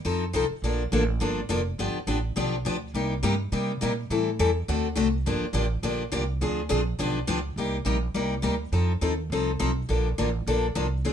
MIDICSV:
0, 0, Header, 1, 4, 480
1, 0, Start_track
1, 0, Key_signature, -2, "minor"
1, 0, Tempo, 289436
1, 1040, Time_signature, 4, 2, 24, 8
1, 18456, End_track
2, 0, Start_track
2, 0, Title_t, "Steel-string acoustic guitar"
2, 0, Program_c, 0, 25
2, 78, Note_on_c, 0, 53, 73
2, 79, Note_on_c, 0, 60, 72
2, 91, Note_on_c, 0, 63, 81
2, 97, Note_on_c, 0, 69, 89
2, 387, Note_off_c, 0, 53, 0
2, 388, Note_off_c, 0, 60, 0
2, 394, Note_off_c, 0, 63, 0
2, 397, Note_off_c, 0, 69, 0
2, 554, Note_on_c, 0, 53, 82
2, 564, Note_on_c, 0, 60, 90
2, 573, Note_on_c, 0, 63, 100
2, 590, Note_on_c, 0, 69, 98
2, 726, Note_off_c, 0, 53, 0
2, 731, Note_off_c, 0, 60, 0
2, 736, Note_off_c, 0, 63, 0
2, 744, Note_off_c, 0, 69, 0
2, 1056, Note_on_c, 0, 53, 71
2, 1061, Note_on_c, 0, 50, 62
2, 1064, Note_on_c, 0, 58, 70
2, 1076, Note_on_c, 0, 62, 71
2, 1078, Note_on_c, 0, 69, 82
2, 1356, Note_off_c, 0, 53, 0
2, 1358, Note_off_c, 0, 50, 0
2, 1360, Note_off_c, 0, 58, 0
2, 1366, Note_off_c, 0, 62, 0
2, 1367, Note_off_c, 0, 69, 0
2, 1525, Note_on_c, 0, 50, 88
2, 1540, Note_on_c, 0, 58, 84
2, 1541, Note_on_c, 0, 53, 84
2, 1541, Note_on_c, 0, 62, 81
2, 1541, Note_on_c, 0, 69, 88
2, 1691, Note_off_c, 0, 50, 0
2, 1699, Note_off_c, 0, 53, 0
2, 1699, Note_off_c, 0, 58, 0
2, 1699, Note_off_c, 0, 62, 0
2, 1700, Note_off_c, 0, 69, 0
2, 1992, Note_on_c, 0, 50, 70
2, 2005, Note_on_c, 0, 53, 74
2, 2007, Note_on_c, 0, 58, 76
2, 2016, Note_on_c, 0, 62, 76
2, 2019, Note_on_c, 0, 69, 77
2, 2304, Note_off_c, 0, 50, 0
2, 2310, Note_off_c, 0, 53, 0
2, 2312, Note_off_c, 0, 58, 0
2, 2316, Note_off_c, 0, 62, 0
2, 2318, Note_off_c, 0, 69, 0
2, 2470, Note_on_c, 0, 50, 94
2, 2481, Note_on_c, 0, 53, 94
2, 2489, Note_on_c, 0, 62, 88
2, 2491, Note_on_c, 0, 58, 92
2, 2492, Note_on_c, 0, 69, 105
2, 2643, Note_off_c, 0, 50, 0
2, 2649, Note_off_c, 0, 53, 0
2, 2653, Note_off_c, 0, 62, 0
2, 2654, Note_off_c, 0, 58, 0
2, 2654, Note_off_c, 0, 69, 0
2, 2968, Note_on_c, 0, 50, 72
2, 2974, Note_on_c, 0, 53, 71
2, 2980, Note_on_c, 0, 62, 73
2, 2982, Note_on_c, 0, 59, 75
2, 2985, Note_on_c, 0, 67, 71
2, 3272, Note_off_c, 0, 50, 0
2, 3275, Note_off_c, 0, 53, 0
2, 3278, Note_off_c, 0, 62, 0
2, 3279, Note_off_c, 0, 59, 0
2, 3280, Note_off_c, 0, 67, 0
2, 3433, Note_on_c, 0, 59, 79
2, 3435, Note_on_c, 0, 53, 76
2, 3437, Note_on_c, 0, 50, 83
2, 3450, Note_on_c, 0, 62, 86
2, 3450, Note_on_c, 0, 67, 85
2, 3605, Note_off_c, 0, 59, 0
2, 3606, Note_off_c, 0, 53, 0
2, 3607, Note_off_c, 0, 50, 0
2, 3614, Note_off_c, 0, 62, 0
2, 3614, Note_off_c, 0, 67, 0
2, 3910, Note_on_c, 0, 50, 73
2, 3920, Note_on_c, 0, 53, 76
2, 3923, Note_on_c, 0, 67, 81
2, 3924, Note_on_c, 0, 59, 78
2, 3934, Note_on_c, 0, 62, 84
2, 4223, Note_off_c, 0, 50, 0
2, 4228, Note_off_c, 0, 53, 0
2, 4229, Note_off_c, 0, 67, 0
2, 4230, Note_off_c, 0, 59, 0
2, 4235, Note_off_c, 0, 62, 0
2, 4393, Note_on_c, 0, 50, 76
2, 4411, Note_on_c, 0, 53, 90
2, 4412, Note_on_c, 0, 59, 83
2, 4413, Note_on_c, 0, 62, 100
2, 4420, Note_on_c, 0, 67, 97
2, 4565, Note_off_c, 0, 50, 0
2, 4574, Note_off_c, 0, 53, 0
2, 4574, Note_off_c, 0, 59, 0
2, 4575, Note_off_c, 0, 62, 0
2, 4579, Note_off_c, 0, 67, 0
2, 4883, Note_on_c, 0, 48, 69
2, 4894, Note_on_c, 0, 55, 65
2, 4897, Note_on_c, 0, 63, 65
2, 4897, Note_on_c, 0, 67, 75
2, 4898, Note_on_c, 0, 58, 68
2, 5189, Note_off_c, 0, 48, 0
2, 5195, Note_off_c, 0, 55, 0
2, 5196, Note_off_c, 0, 63, 0
2, 5196, Note_off_c, 0, 67, 0
2, 5197, Note_off_c, 0, 58, 0
2, 5351, Note_on_c, 0, 48, 93
2, 5359, Note_on_c, 0, 58, 81
2, 5360, Note_on_c, 0, 55, 94
2, 5372, Note_on_c, 0, 63, 86
2, 5372, Note_on_c, 0, 67, 94
2, 5524, Note_off_c, 0, 48, 0
2, 5528, Note_off_c, 0, 55, 0
2, 5528, Note_off_c, 0, 58, 0
2, 5534, Note_off_c, 0, 63, 0
2, 5534, Note_off_c, 0, 67, 0
2, 5837, Note_on_c, 0, 48, 70
2, 5843, Note_on_c, 0, 55, 75
2, 5854, Note_on_c, 0, 58, 73
2, 5858, Note_on_c, 0, 67, 84
2, 5860, Note_on_c, 0, 63, 74
2, 6146, Note_off_c, 0, 48, 0
2, 6149, Note_off_c, 0, 55, 0
2, 6154, Note_off_c, 0, 58, 0
2, 6157, Note_off_c, 0, 63, 0
2, 6157, Note_off_c, 0, 67, 0
2, 6318, Note_on_c, 0, 48, 87
2, 6334, Note_on_c, 0, 58, 89
2, 6339, Note_on_c, 0, 55, 92
2, 6343, Note_on_c, 0, 63, 89
2, 6353, Note_on_c, 0, 67, 97
2, 6487, Note_off_c, 0, 48, 0
2, 6495, Note_off_c, 0, 58, 0
2, 6498, Note_off_c, 0, 55, 0
2, 6500, Note_off_c, 0, 63, 0
2, 6505, Note_off_c, 0, 67, 0
2, 6807, Note_on_c, 0, 52, 68
2, 6816, Note_on_c, 0, 55, 63
2, 6816, Note_on_c, 0, 64, 73
2, 6822, Note_on_c, 0, 60, 71
2, 6828, Note_on_c, 0, 69, 74
2, 7111, Note_off_c, 0, 52, 0
2, 7115, Note_off_c, 0, 55, 0
2, 7116, Note_off_c, 0, 64, 0
2, 7119, Note_off_c, 0, 60, 0
2, 7121, Note_off_c, 0, 69, 0
2, 7286, Note_on_c, 0, 52, 85
2, 7288, Note_on_c, 0, 60, 81
2, 7288, Note_on_c, 0, 64, 90
2, 7290, Note_on_c, 0, 55, 87
2, 7298, Note_on_c, 0, 69, 94
2, 7451, Note_off_c, 0, 52, 0
2, 7452, Note_off_c, 0, 60, 0
2, 7452, Note_off_c, 0, 64, 0
2, 7453, Note_off_c, 0, 55, 0
2, 7457, Note_off_c, 0, 69, 0
2, 7767, Note_on_c, 0, 50, 80
2, 7774, Note_on_c, 0, 66, 78
2, 7777, Note_on_c, 0, 57, 80
2, 7779, Note_on_c, 0, 60, 87
2, 7783, Note_on_c, 0, 69, 80
2, 8071, Note_off_c, 0, 50, 0
2, 8075, Note_off_c, 0, 66, 0
2, 8076, Note_off_c, 0, 57, 0
2, 8077, Note_off_c, 0, 60, 0
2, 8079, Note_off_c, 0, 69, 0
2, 8217, Note_on_c, 0, 50, 90
2, 8229, Note_on_c, 0, 57, 97
2, 8237, Note_on_c, 0, 66, 105
2, 8238, Note_on_c, 0, 69, 93
2, 8243, Note_on_c, 0, 60, 101
2, 8397, Note_off_c, 0, 50, 0
2, 8403, Note_off_c, 0, 57, 0
2, 8407, Note_off_c, 0, 66, 0
2, 8407, Note_off_c, 0, 69, 0
2, 8410, Note_off_c, 0, 60, 0
2, 8726, Note_on_c, 0, 50, 74
2, 8731, Note_on_c, 0, 58, 72
2, 8738, Note_on_c, 0, 53, 76
2, 8739, Note_on_c, 0, 67, 74
2, 8741, Note_on_c, 0, 62, 79
2, 9030, Note_off_c, 0, 50, 0
2, 9033, Note_off_c, 0, 58, 0
2, 9036, Note_off_c, 0, 53, 0
2, 9037, Note_off_c, 0, 67, 0
2, 9038, Note_off_c, 0, 62, 0
2, 9173, Note_on_c, 0, 50, 87
2, 9186, Note_on_c, 0, 53, 83
2, 9195, Note_on_c, 0, 58, 89
2, 9197, Note_on_c, 0, 62, 92
2, 9199, Note_on_c, 0, 67, 93
2, 9354, Note_off_c, 0, 50, 0
2, 9361, Note_off_c, 0, 53, 0
2, 9365, Note_off_c, 0, 58, 0
2, 9366, Note_off_c, 0, 62, 0
2, 9367, Note_off_c, 0, 67, 0
2, 9669, Note_on_c, 0, 53, 73
2, 9673, Note_on_c, 0, 50, 85
2, 9677, Note_on_c, 0, 58, 82
2, 9686, Note_on_c, 0, 67, 87
2, 9691, Note_on_c, 0, 62, 81
2, 9982, Note_off_c, 0, 53, 0
2, 9984, Note_off_c, 0, 50, 0
2, 9986, Note_off_c, 0, 58, 0
2, 9990, Note_off_c, 0, 67, 0
2, 9993, Note_off_c, 0, 62, 0
2, 10143, Note_on_c, 0, 50, 90
2, 10150, Note_on_c, 0, 53, 90
2, 10153, Note_on_c, 0, 58, 98
2, 10160, Note_on_c, 0, 62, 96
2, 10165, Note_on_c, 0, 67, 101
2, 10319, Note_off_c, 0, 50, 0
2, 10323, Note_off_c, 0, 53, 0
2, 10324, Note_off_c, 0, 58, 0
2, 10328, Note_off_c, 0, 62, 0
2, 10331, Note_off_c, 0, 67, 0
2, 10632, Note_on_c, 0, 50, 68
2, 10639, Note_on_c, 0, 53, 80
2, 10644, Note_on_c, 0, 60, 71
2, 10652, Note_on_c, 0, 68, 76
2, 10658, Note_on_c, 0, 62, 73
2, 10943, Note_off_c, 0, 50, 0
2, 10947, Note_off_c, 0, 53, 0
2, 10949, Note_off_c, 0, 60, 0
2, 10953, Note_off_c, 0, 68, 0
2, 10956, Note_off_c, 0, 62, 0
2, 11097, Note_on_c, 0, 50, 90
2, 11101, Note_on_c, 0, 60, 84
2, 11104, Note_on_c, 0, 53, 82
2, 11113, Note_on_c, 0, 62, 97
2, 11115, Note_on_c, 0, 68, 96
2, 11276, Note_off_c, 0, 50, 0
2, 11278, Note_off_c, 0, 60, 0
2, 11279, Note_off_c, 0, 53, 0
2, 11284, Note_off_c, 0, 62, 0
2, 11285, Note_off_c, 0, 68, 0
2, 11586, Note_on_c, 0, 50, 72
2, 11596, Note_on_c, 0, 53, 82
2, 11604, Note_on_c, 0, 59, 79
2, 11610, Note_on_c, 0, 67, 89
2, 11614, Note_on_c, 0, 62, 85
2, 11900, Note_off_c, 0, 50, 0
2, 11905, Note_off_c, 0, 53, 0
2, 11909, Note_off_c, 0, 59, 0
2, 11912, Note_off_c, 0, 67, 0
2, 11914, Note_off_c, 0, 62, 0
2, 12062, Note_on_c, 0, 50, 96
2, 12067, Note_on_c, 0, 59, 104
2, 12070, Note_on_c, 0, 53, 98
2, 12076, Note_on_c, 0, 62, 92
2, 12084, Note_on_c, 0, 67, 107
2, 12239, Note_off_c, 0, 50, 0
2, 12241, Note_off_c, 0, 59, 0
2, 12243, Note_off_c, 0, 53, 0
2, 12245, Note_off_c, 0, 62, 0
2, 12250, Note_off_c, 0, 67, 0
2, 12562, Note_on_c, 0, 48, 57
2, 12569, Note_on_c, 0, 55, 58
2, 12576, Note_on_c, 0, 67, 72
2, 12579, Note_on_c, 0, 63, 74
2, 12584, Note_on_c, 0, 58, 65
2, 12868, Note_off_c, 0, 48, 0
2, 12871, Note_off_c, 0, 55, 0
2, 12875, Note_off_c, 0, 67, 0
2, 12876, Note_off_c, 0, 63, 0
2, 12879, Note_off_c, 0, 58, 0
2, 13015, Note_on_c, 0, 48, 81
2, 13029, Note_on_c, 0, 58, 89
2, 13033, Note_on_c, 0, 55, 74
2, 13034, Note_on_c, 0, 67, 85
2, 13040, Note_on_c, 0, 63, 81
2, 13195, Note_off_c, 0, 48, 0
2, 13202, Note_off_c, 0, 58, 0
2, 13204, Note_off_c, 0, 55, 0
2, 13205, Note_off_c, 0, 67, 0
2, 13208, Note_off_c, 0, 63, 0
2, 13506, Note_on_c, 0, 55, 73
2, 13509, Note_on_c, 0, 48, 67
2, 13525, Note_on_c, 0, 58, 78
2, 13526, Note_on_c, 0, 67, 79
2, 13530, Note_on_c, 0, 63, 76
2, 13820, Note_off_c, 0, 55, 0
2, 13821, Note_off_c, 0, 48, 0
2, 13830, Note_off_c, 0, 58, 0
2, 13830, Note_off_c, 0, 67, 0
2, 13832, Note_off_c, 0, 63, 0
2, 13967, Note_on_c, 0, 48, 85
2, 13981, Note_on_c, 0, 55, 89
2, 13983, Note_on_c, 0, 58, 89
2, 13991, Note_on_c, 0, 63, 86
2, 13993, Note_on_c, 0, 67, 89
2, 14151, Note_off_c, 0, 48, 0
2, 14158, Note_off_c, 0, 55, 0
2, 14159, Note_off_c, 0, 58, 0
2, 14163, Note_off_c, 0, 63, 0
2, 14164, Note_off_c, 0, 67, 0
2, 14470, Note_on_c, 0, 60, 67
2, 14471, Note_on_c, 0, 53, 65
2, 14487, Note_on_c, 0, 63, 66
2, 14489, Note_on_c, 0, 69, 66
2, 14782, Note_off_c, 0, 53, 0
2, 14782, Note_off_c, 0, 60, 0
2, 14791, Note_off_c, 0, 63, 0
2, 14791, Note_off_c, 0, 69, 0
2, 14948, Note_on_c, 0, 53, 82
2, 14956, Note_on_c, 0, 60, 82
2, 14965, Note_on_c, 0, 63, 85
2, 14969, Note_on_c, 0, 69, 81
2, 15122, Note_off_c, 0, 53, 0
2, 15126, Note_off_c, 0, 60, 0
2, 15131, Note_off_c, 0, 63, 0
2, 15132, Note_off_c, 0, 69, 0
2, 15458, Note_on_c, 0, 53, 69
2, 15460, Note_on_c, 0, 60, 76
2, 15473, Note_on_c, 0, 69, 73
2, 15474, Note_on_c, 0, 63, 80
2, 15756, Note_off_c, 0, 53, 0
2, 15757, Note_off_c, 0, 60, 0
2, 15763, Note_off_c, 0, 69, 0
2, 15764, Note_off_c, 0, 63, 0
2, 15911, Note_on_c, 0, 53, 87
2, 15915, Note_on_c, 0, 63, 94
2, 15916, Note_on_c, 0, 60, 91
2, 15924, Note_on_c, 0, 69, 102
2, 16083, Note_off_c, 0, 53, 0
2, 16085, Note_off_c, 0, 63, 0
2, 16086, Note_off_c, 0, 60, 0
2, 16090, Note_off_c, 0, 69, 0
2, 16395, Note_on_c, 0, 50, 70
2, 16400, Note_on_c, 0, 53, 72
2, 16415, Note_on_c, 0, 58, 68
2, 16415, Note_on_c, 0, 69, 72
2, 16420, Note_on_c, 0, 62, 73
2, 16705, Note_off_c, 0, 50, 0
2, 16707, Note_off_c, 0, 53, 0
2, 16715, Note_off_c, 0, 58, 0
2, 16715, Note_off_c, 0, 69, 0
2, 16717, Note_off_c, 0, 62, 0
2, 16883, Note_on_c, 0, 50, 84
2, 16884, Note_on_c, 0, 53, 93
2, 16899, Note_on_c, 0, 58, 86
2, 16900, Note_on_c, 0, 69, 89
2, 16905, Note_on_c, 0, 62, 82
2, 17049, Note_off_c, 0, 50, 0
2, 17050, Note_off_c, 0, 53, 0
2, 17057, Note_off_c, 0, 58, 0
2, 17058, Note_off_c, 0, 69, 0
2, 17060, Note_off_c, 0, 62, 0
2, 17369, Note_on_c, 0, 58, 76
2, 17372, Note_on_c, 0, 50, 73
2, 17372, Note_on_c, 0, 53, 77
2, 17384, Note_on_c, 0, 62, 80
2, 17388, Note_on_c, 0, 69, 80
2, 17672, Note_off_c, 0, 58, 0
2, 17673, Note_off_c, 0, 50, 0
2, 17673, Note_off_c, 0, 53, 0
2, 17679, Note_off_c, 0, 62, 0
2, 17681, Note_off_c, 0, 69, 0
2, 17833, Note_on_c, 0, 50, 84
2, 17835, Note_on_c, 0, 53, 84
2, 17837, Note_on_c, 0, 58, 88
2, 17843, Note_on_c, 0, 62, 95
2, 17852, Note_on_c, 0, 69, 87
2, 18004, Note_off_c, 0, 50, 0
2, 18005, Note_off_c, 0, 53, 0
2, 18006, Note_off_c, 0, 58, 0
2, 18009, Note_off_c, 0, 62, 0
2, 18014, Note_off_c, 0, 69, 0
2, 18319, Note_on_c, 0, 50, 67
2, 18326, Note_on_c, 0, 60, 72
2, 18327, Note_on_c, 0, 53, 70
2, 18334, Note_on_c, 0, 62, 71
2, 18341, Note_on_c, 0, 68, 70
2, 18456, Note_off_c, 0, 50, 0
2, 18456, Note_off_c, 0, 53, 0
2, 18456, Note_off_c, 0, 60, 0
2, 18456, Note_off_c, 0, 62, 0
2, 18456, Note_off_c, 0, 68, 0
2, 18456, End_track
3, 0, Start_track
3, 0, Title_t, "Upright bass"
3, 0, Program_c, 1, 32
3, 86, Note_on_c, 1, 41, 87
3, 548, Note_off_c, 1, 41, 0
3, 559, Note_on_c, 1, 36, 91
3, 811, Note_off_c, 1, 36, 0
3, 1028, Note_on_c, 1, 34, 83
3, 1499, Note_off_c, 1, 34, 0
3, 1523, Note_on_c, 1, 33, 96
3, 1986, Note_off_c, 1, 33, 0
3, 1998, Note_on_c, 1, 31, 86
3, 2464, Note_off_c, 1, 31, 0
3, 2476, Note_on_c, 1, 29, 86
3, 2943, Note_off_c, 1, 29, 0
3, 2957, Note_on_c, 1, 31, 81
3, 3210, Note_off_c, 1, 31, 0
3, 3430, Note_on_c, 1, 33, 90
3, 3899, Note_off_c, 1, 33, 0
3, 3923, Note_on_c, 1, 35, 88
3, 4386, Note_off_c, 1, 35, 0
3, 4404, Note_on_c, 1, 38, 86
3, 4863, Note_off_c, 1, 38, 0
3, 4873, Note_on_c, 1, 36, 84
3, 5341, Note_off_c, 1, 36, 0
3, 5354, Note_on_c, 1, 43, 96
3, 5821, Note_off_c, 1, 43, 0
3, 5839, Note_on_c, 1, 48, 88
3, 6304, Note_off_c, 1, 48, 0
3, 6339, Note_on_c, 1, 46, 92
3, 6790, Note_off_c, 1, 46, 0
3, 6800, Note_on_c, 1, 45, 89
3, 7264, Note_off_c, 1, 45, 0
3, 7288, Note_on_c, 1, 40, 101
3, 7749, Note_off_c, 1, 40, 0
3, 7766, Note_on_c, 1, 38, 91
3, 8213, Note_off_c, 1, 38, 0
3, 8223, Note_on_c, 1, 36, 92
3, 8696, Note_off_c, 1, 36, 0
3, 8720, Note_on_c, 1, 31, 82
3, 8971, Note_off_c, 1, 31, 0
3, 9169, Note_on_c, 1, 33, 105
3, 9648, Note_off_c, 1, 33, 0
3, 9661, Note_on_c, 1, 34, 88
3, 10134, Note_off_c, 1, 34, 0
3, 10155, Note_on_c, 1, 36, 92
3, 10622, Note_off_c, 1, 36, 0
3, 10637, Note_on_c, 1, 38, 90
3, 11103, Note_off_c, 1, 38, 0
3, 11117, Note_on_c, 1, 34, 100
3, 11582, Note_off_c, 1, 34, 0
3, 11598, Note_on_c, 1, 35, 91
3, 12063, Note_off_c, 1, 35, 0
3, 12073, Note_on_c, 1, 37, 99
3, 12529, Note_off_c, 1, 37, 0
3, 12539, Note_on_c, 1, 36, 83
3, 13010, Note_off_c, 1, 36, 0
3, 13020, Note_on_c, 1, 34, 85
3, 13494, Note_off_c, 1, 34, 0
3, 13507, Note_on_c, 1, 36, 80
3, 13977, Note_off_c, 1, 36, 0
3, 13991, Note_on_c, 1, 38, 88
3, 14450, Note_off_c, 1, 38, 0
3, 14460, Note_on_c, 1, 41, 87
3, 14934, Note_off_c, 1, 41, 0
3, 14948, Note_on_c, 1, 39, 92
3, 15411, Note_off_c, 1, 39, 0
3, 15421, Note_on_c, 1, 36, 88
3, 15894, Note_off_c, 1, 36, 0
3, 15936, Note_on_c, 1, 35, 89
3, 16392, Note_off_c, 1, 35, 0
3, 16410, Note_on_c, 1, 34, 87
3, 16869, Note_off_c, 1, 34, 0
3, 16891, Note_on_c, 1, 33, 100
3, 17347, Note_off_c, 1, 33, 0
3, 17356, Note_on_c, 1, 34, 89
3, 17822, Note_off_c, 1, 34, 0
3, 17837, Note_on_c, 1, 36, 93
3, 18302, Note_off_c, 1, 36, 0
3, 18324, Note_on_c, 1, 38, 86
3, 18456, Note_off_c, 1, 38, 0
3, 18456, End_track
4, 0, Start_track
4, 0, Title_t, "Muted upright bass strokes"
4, 834, Note_on_c, 9, 29, 41
4, 1000, Note_off_c, 9, 29, 0
4, 8984, Note_on_c, 9, 29, 42
4, 9150, Note_off_c, 9, 29, 0
4, 18456, End_track
0, 0, End_of_file